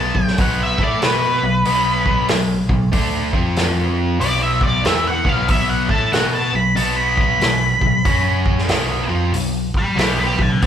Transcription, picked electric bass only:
0.00 0.12 B1 medium
0.14 0.37 B1 medium
0.39 0.76 B1 medium
0.79 1.01 A2 medium
1.02 1.40 B2 medium
1.42 1.64 B1 medium
1.66 2.26 B1 medium
2.30 2.67 B1 medium
2.69 2.92 B1 medium
2.93 3.31 D2 medium
3.33 4.17 F2 medium
4.21 4.81 B1 medium
4.85 5.22 E2 medium
5.25 5.47 B1 medium
5.49 5.87 B1 medium
5.89 6.12 A2 medium
6.13 6.50 B2 loud
6.52 6.75 B1 medium
6.77 7.37 B1 medium
7.40 7.78 B1 medium
7.81 8.04 B1 medium
8.05 8.66 F#2 medium
8.68 9.06 B1 medium
9.09 9.31 F2 medium
9.32 9.70 B1 medium
9.97 10.35 B1 medium
10.38 10.61 B1 medium
10.63 10.66 B1 medium

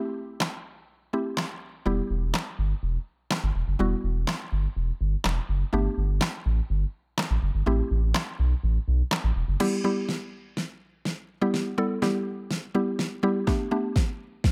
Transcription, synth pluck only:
0.00 1.11 A3 medium
0.00 1.11 C4 medium
0.00 1.11 E4 medium
0.00 1.11 G4 medium
1.13 1.86 A3 medium
1.13 1.86 C4 soft
1.13 1.85 E4 medium
1.13 1.85 G4 medium
1.86 3.75 G3 medium
1.86 3.76 B3 medium
1.86 3.76 E4 medium
1.86 3.76 G4 medium
3.79 5.69 G3 medium
3.79 5.69 B3 medium
3.79 5.69 E4 medium
3.79 5.70 F#4 medium
5.73 7.63 A3 medium
5.73 7.63 B3 medium
5.73 7.63 D4 medium
5.73 7.63 G4 medium
7.66 9.56 A3 medium
7.66 9.56 C4 medium
7.66 9.56 E4 medium
7.66 9.57 G4 medium
9.60 9.80 G3 loud
9.60 9.80 B3 medium
9.60 9.80 E4 medium
9.60 9.81 G4 loud
9.84 10.65 G3 medium
9.84 10.65 B3 medium
9.84 10.65 E4 medium
9.84 10.65 G4 medium
11.41 11.72 G3 medium
11.41 11.72 B3 medium
11.41 11.72 E4 medium
11.41 11.72 G4 medium
11.78 11.98 G3 medium
11.78 11.98 B3 medium
11.78 11.98 E4 medium
11.78 11.98 A4 loud
12.02 12.63 G3 medium
12.02 12.63 B3 medium
12.02 12.63 E4 medium
12.02 12.63 G4 medium
12.74 13.15 G3 medium
12.74 13.15 B3 medium
12.74 13.15 E4 medium
12.74 13.15 G4 medium
13.23 13.43 G3 medium
13.23 13.43 B3 medium
13.23 13.43 E4 medium
13.23 13.43 G4 loud
13.47 13.67 A3 loud
13.47 13.67 B3 medium
13.47 13.68 D4 medium
13.47 13.68 G4 loud
13.71 14.52 A3 medium
13.71 14.52 B3 medium
13.71 14.52 D4 medium
13.71 14.52 G4 medium

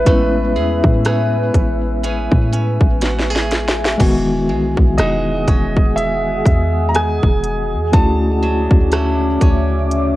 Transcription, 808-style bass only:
0.07 0.57 A1 loud
0.56 0.83 E2 loud
0.84 1.51 A2 loud
1.55 2.29 A1 loud
2.32 2.79 A2 loud
2.81 3.96 A1 loud
4.00 4.51 E1 loud
4.49 4.76 B1 medium
4.78 4.97 B1 loud
4.99 5.46 E1 loud
5.48 6.42 E1 loud
6.46 7.20 E2 loud
7.23 7.75 E1 loud
7.74 7.93 E2 loud
7.94 8.68 D2 loud
8.71 9.38 D2 medium
9.42 10.16 D2 loud

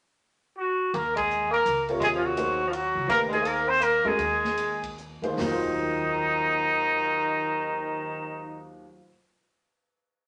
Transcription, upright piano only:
1.88 2.34 C3 medium
1.88 2.34 F4 medium
1.88 2.35 A#4 medium
1.88 2.35 C#5 medium
2.37 2.57 A#3 medium
2.37 2.57 D#4 medium
2.37 2.58 G#4 medium
2.37 2.58 C5 medium
3.09 3.29 A3 medium
3.09 3.30 D4 soft
3.09 3.30 G4 soft
3.09 3.30 B4 medium
3.32 3.63 A#3 medium
3.32 3.64 D#4 medium
3.32 3.63 G#4 medium
3.32 3.64 C5 medium
4.04 4.17 G#3 medium
4.04 4.17 C#4 medium
4.04 4.17 F#4 medium
4.04 4.18 A#4 medium
5.22 5.77 A#3 medium
5.22 5.77 D#4 medium
5.22 5.77 G#4 medium
5.22 5.50 C5 medium
5.27 8.82 D#2 medium
5.33 8.88 D#3 soft
5.39 8.95 F#3 medium
5.45 9.01 F4 medium
5.52 9.07 C5 medium

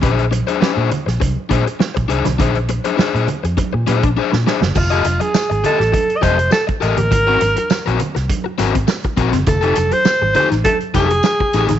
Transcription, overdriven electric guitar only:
0.02 0.23 D4 medium
0.02 0.23 G#4 medium
0.02 0.24 C5 medium
0.31 muted overdriven electric guitar stroke soft
0.47 0.59 D4 medium
0.47 0.59 G#4 medium
0.47 0.59 C5 medium
0.61 0.73 C#4 medium
0.61 0.73 G4 medium
0.61 0.74 B4 loud
0.73 0.89 D4 medium
0.73 0.89 G#4 medium
0.73 0.89 C5 loud
0.91 muted overdriven electric guitar stroke soft
1.06 muted overdriven electric guitar stroke soft
1.20 muted overdriven electric guitar stroke soft
1.49 1.63 D4 medium
1.49 1.63 G#4 medium
1.49 1.64 C5 medium
1.66 muted overdriven electric guitar stroke medium
1.80 muted overdriven electric guitar stroke soft
1.94 muted overdriven electric guitar stroke soft
2.08 2.25 D4 medium
2.08 2.25 G#4 loud
2.08 2.24 C5 medium
2.25 muted overdriven electric guitar stroke medium
2.39 2.55 D4 medium
2.39 2.56 G#4 medium
2.39 2.56 C5 medium
2.69 muted overdriven electric guitar stroke soft
2.85 2.96 D4 medium
2.85 2.96 G#4 medium
2.85 2.96 C5 medium
2.97 3.25 D4 medium
2.97 3.26 G#4 loud
2.97 3.26 C5 loud
3.28 muted overdriven electric guitar stroke soft
3.43 muted overdriven electric guitar stroke medium
3.57 muted overdriven electric guitar stroke medium
3.73 muted overdriven electric guitar stroke medium
3.87 4.07 D4 medium
3.87 4.04 G#4 loud
3.87 4.03 C5 loud
4.04 muted overdriven electric guitar stroke soft
4.17 4.32 D4 medium
4.17 4.32 G#4 loud
4.17 4.31 C5 loud
4.32 muted overdriven electric guitar stroke soft
4.47 4.59 D4 medium
4.47 4.59 G#4 medium
4.47 4.60 C5 medium
4.62 muted overdriven electric guitar stroke soft
4.75 muted overdriven electric guitar stroke soft
4.90 5.04 G4 medium
4.90 5.04 A4 medium
4.90 5.05 D#5 medium
5.05 muted overdriven electric guitar stroke soft
5.20 muted overdriven electric guitar stroke medium
5.34 muted overdriven electric guitar stroke soft
5.50 muted overdriven electric guitar stroke soft
5.64 5.80 G4 medium
5.64 5.79 A4 medium
5.64 5.78 D#5 medium
5.80 muted overdriven electric guitar stroke soft
5.92 muted overdriven electric guitar stroke medium
6.22 6.35 G4 medium
6.22 6.35 A4 medium
6.22 6.36 D#5 medium
6.38 muted overdriven electric guitar stroke soft
6.51 muted overdriven electric guitar stroke soft
6.67 muted overdriven electric guitar stroke soft
6.81 6.97 G4 medium
6.81 6.97 A4 loud
6.81 6.96 D#5 medium
6.97 muted overdriven electric guitar stroke soft
7.11 muted overdriven electric guitar stroke soft
7.27 7.40 C4 medium
7.27 7.40 F#4 medium
7.27 7.41 A#4 medium
7.41 muted overdriven electric guitar stroke soft
7.56 muted overdriven electric guitar stroke soft
7.70 muted overdriven electric guitar stroke soft
7.86 7.99 C4 medium
7.86 7.99 F#4 medium
7.86 8.00 A#4 medium
8.00 muted overdriven electric guitar stroke soft
8.15 muted overdriven electric guitar stroke soft
8.44 muted overdriven electric guitar stroke medium
8.58 8.74 C4 medium
8.58 8.74 F#4 medium
8.58 8.73 A#4 loud
8.74 muted overdriven electric guitar stroke medium
8.88 muted overdriven electric guitar stroke soft
9.05 muted overdriven electric guitar stroke soft
9.17 9.33 C4 loud
9.17 9.32 F#4 loud
9.17 9.31 A#4 loud
9.33 muted overdriven electric guitar stroke medium
9.47 muted overdriven electric guitar stroke soft
9.61 9.75 D#4 medium
9.61 9.76 G4 medium
9.61 9.76 A4 medium
9.77 muted overdriven electric guitar stroke soft
9.92 muted overdriven electric guitar stroke soft
10.05 muted overdriven electric guitar stroke soft
10.22 muted overdriven electric guitar stroke soft
10.35 10.51 D#4 medium
10.35 10.51 G4 medium
10.35 10.50 A4 medium
10.51 muted overdriven electric guitar stroke soft
10.65 muted overdriven electric guitar stroke soft
10.94 11.07 D#4 medium
10.94 11.07 G4 medium
10.94 11.08 A4 medium
11.11 muted overdriven electric guitar stroke medium
11.24 muted overdriven electric guitar stroke soft
11.41 muted overdriven electric guitar stroke soft
11.54 11.70 D#4 medium
11.54 11.69 G4 loud
11.54 11.68 A4 loud
11.69 muted overdriven electric guitar stroke soft

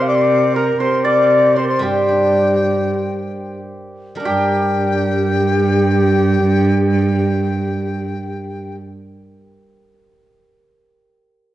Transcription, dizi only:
0.08 0.17 D6 medium
0.15 0.23 C6 medium
0.22 0.57 D6 medium
0.55 0.80 A#5 medium
0.79 1.03 C6 medium
1.03 1.56 D6 medium
1.55 1.68 C6 medium
1.69 1.84 C6 medium
1.83 3.59 G5 medium
4.25 8.75 G5 loud

